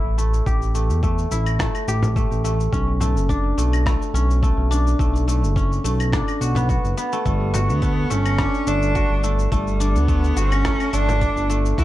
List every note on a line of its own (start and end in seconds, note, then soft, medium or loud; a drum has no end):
0.00 0.17 A3 medium
0.00 0.60 B3 medium
0.00 1.31 E4 medium
0.00 0.46 G4 medium
0.04 0.41 A1 medium
0.18 0.74 A3 medium
0.18 shaker medium
0.34 shaker soft
0.46 0.91 A1 loud
0.46 1.88 G4 medium
0.46 kick loud
0.46 shaker soft
0.62 shaker soft
0.75 1.03 A3 medium
0.75 shaker medium
0.89 1.26 E2 loud
0.89 shaker soft
1.03 1.59 A3 medium
1.03 kick loud
1.03 shaker soft
1.18 shaker soft
1.31 1.69 A1 medium
1.31 3.93 E4 medium
1.31 shaker medium
1.46 claves medium
1.46 shaker soft
1.59 2.16 A3 medium
1.59 kick loud
1.59 cross-stick medium
1.59 shaker soft
1.75 claves medium
1.75 shaker soft
1.88 2.26 A1 medium
1.88 4.23 G4 medium
1.88 shaker medium
2.03 frame drum loud
2.03 shaker soft
2.16 2.44 A3 medium
2.16 kick loud
2.16 shaker soft
2.31 2.68 A1 medium
2.31 shaker soft
2.44 3.01 A3 medium
2.44 shaker medium
2.60 shaker soft
2.72 3.17 B1 loud
2.72 3.35 C#4 medium
2.72 kick loud
2.72 shaker soft
3.00 3.57 A3 medium
3.00 frame drum medium
3.00 shaker medium
3.15 3.53 F#1 medium
3.15 shaker soft
3.29 4.20 D4 medium
3.29 kick loud
3.29 shaker soft
3.57 3.96 B1 medium
3.57 3.85 A3 medium
3.57 shaker medium
3.73 claves medium
3.73 shaker soft
3.86 4.42 A3 medium
3.86 kick loud
3.86 cross-stick medium
3.86 shaker soft
4.02 shaker soft
4.14 4.52 B1 medium
4.14 4.77 C#4 medium
4.14 shaker medium
4.30 shaker soft
4.43 4.99 A3 medium
4.43 kick loud
4.43 shaker soft
4.57 4.94 B1 medium
4.71 5.62 D4 medium
4.71 shaker medium
4.87 shaker soft
4.99 5.44 B1 loud
4.99 5.27 A3 medium
4.99 kick loud
4.99 shaker soft
5.16 shaker soft
5.28 5.84 A3 medium
5.28 shaker medium
5.43 5.79 F#1 loud
5.43 shaker soft
5.56 6.19 C#4 medium
5.56 kick loud
5.56 shaker soft
5.72 shaker soft
5.84 6.22 B1 medium
5.84 7.12 A3 medium
5.84 shaker medium
6.00 claves medium
6.00 shaker soft
6.13 8.38 D4 medium
6.13 kick loud
6.13 cross-stick medium
6.13 frame drum medium
6.13 shaker soft
6.28 claves medium
6.28 shaker soft
6.41 6.79 B1 medium
6.41 6.69 F#4 medium
6.41 shaker medium
6.55 6.97 B3 medium
6.55 frame drum medium
6.55 shaker soft
6.69 7.53 F#4 medium
6.69 kick loud
6.69 shaker soft
6.84 6.95 F#1 medium
6.84 shaker soft
6.97 10.08 B3 medium
6.97 shaker medium
7.13 7.25 A3 medium
7.13 shaker soft
7.25 7.71 G1 loud
7.25 7.66 G3 medium
7.25 7.81 A3 medium
7.25 kick medium
7.25 shaker soft
7.54 8.95 F#4 medium
7.54 frame drum medium
7.54 shaker medium
7.69 8.06 D2 medium
7.69 8.12 B3 medium
7.69 shaker soft
7.82 8.10 A3 medium
7.82 kick loud
7.82 shaker soft
8.10 8.49 G1 medium
8.10 8.67 A3 medium
8.10 8.69 C#4 loud
8.10 shaker medium
8.26 claves medium
8.26 shaker soft
8.39 9.80 D4 medium
8.39 kick loud
8.39 cross-stick medium
8.39 shaker soft
8.54 shaker soft
8.67 9.05 G1 medium
8.67 9.23 A3 medium
8.67 9.24 D4 loud
8.67 shaker medium
8.82 shaker soft
8.95 10.36 F#4 medium
8.95 kick loud
8.95 shaker soft
9.10 9.47 G1 medium
9.24 9.51 A3 medium
9.24 shaker medium
9.39 shaker soft
9.52 9.96 G1 loud
9.52 9.97 G3 medium
9.52 10.08 A3 medium
9.52 kick loud
9.52 shaker soft
9.67 shaker soft
9.80 11.21 D4 medium
9.80 shaker medium
9.95 10.32 D2 loud
9.95 10.39 B3 medium
9.95 shaker soft
10.08 10.64 A3 medium
10.08 kick loud
10.08 shaker soft
10.24 shaker soft
10.36 10.75 G1 medium
10.36 10.95 C#4 loud
10.36 11.78 F#4 medium
10.36 shaker medium
10.52 claves medium
10.52 shaker soft
10.65 10.92 A3 medium
10.65 kick loud
10.65 cross-stick medium
10.65 shaker soft
10.80 claves medium
10.80 shaker soft
10.93 11.31 G1 loud
10.93 11.49 A3 medium
10.93 11.50 D4 loud
10.93 shaker medium
11.09 frame drum medium
11.09 shaker soft
11.21 11.84 D4 medium
11.21 kick loud
11.21 shaker soft
11.36 11.73 G1 medium
11.36 shaker soft
11.49 11.84 A3 medium
11.49 shaker medium
11.66 shaker soft
11.78 11.84 D2 medium
11.78 11.84 E4 loud
11.78 11.84 F#4 loud
11.78 kick medium
11.78 shaker soft